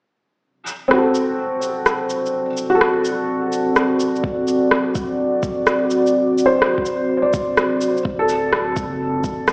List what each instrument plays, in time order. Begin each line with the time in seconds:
0.43 ambient pad C4 F#4 D5
0.67 shaker
0.88 felt piano C4, cross-stick
0.93 felt piano F#4
0.98 felt piano A4
1.15 shaker
1.62 shaker
1.86 cross-stick, shaker
2.10 shaker
2.26 shaker
2.57 shaker
2.70 felt piano F#4
2.75 felt piano A4
2.81 cross-stick
3.05 shaker
3.52 shaker
3.76 cross-stick, shaker
4.00 shaker
4.16 shaker
4.24 kick
4.48 shaker
4.71 cross-stick
4.95 kick, shaker
5.43 kick, shaker
5.67 cross-stick, shaker
5.91 shaker
6.07 shaker
6.38 shaker
6.46 felt piano C5
6.62 cross-stick
6.78 kick
6.86 shaker
7.22 felt piano D5
7.34 kick, shaker
7.57 cross-stick, shaker
7.81 shaker
7.97 shaker
8.05 sub bass D1, ambient pad C4 F#4 D5, kick
8.19 felt piano A4
8.29 shaker
8.53 cross-stick
8.76 sub bass F#1, kick, shaker
9.24 sub bass D1, kick, shaker
9.48 cross-stick, shaker